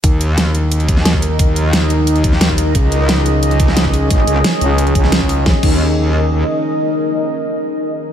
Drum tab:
CC |----------------|----------------|----------------|----------------|
HH |x-x-x-x-xxx-x-x-|x-x-x-x-xxx-x-x-|x-x-x-x-xxx-x-o-|x-x-x-x-xxx-x-o-|
SD |----o------oo---|----o------oo---|----o------oo---|----o------oo---|
BD |o---------o--o--|o---------o--o--|o---------o--o--|o---------o--o--|

CC |--x-------------|----------------|
HH |----------------|----------------|
SD |o---------------|----------------|
BD |o-o-------------|----------------|